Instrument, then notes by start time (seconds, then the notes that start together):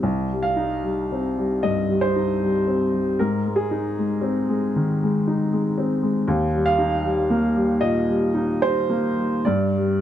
upright piano
0.03 C2
0.32 G3
0.43 F5
0.56 D#4
0.84 G3
1.12 C4
1.37 G3
1.63 G2 D#5
1.90 G3
2.01 C5
2.16 D#4
2.42 G3
2.67 C4
2.94 G3
3.19 G#2 A#4
3.46 G#3
3.56 G#4
3.71 D#4
3.99 G#3
4.21 C4
4.49 G#3
4.76 D#3
5.03 G#3
5.27 D#4
5.53 G#3
5.78 C4
6.03 G#3
6.28 D#2
6.54 G3
6.66 F5
6.78 D#4
7.04 G3
7.30 A#3
7.56 G3
7.81 A#2 D#5
8.09 G3
8.35 D#4
8.62 G3 C5
8.90 A#3
9.17 G3
9.45 G2 D5
9.77 G3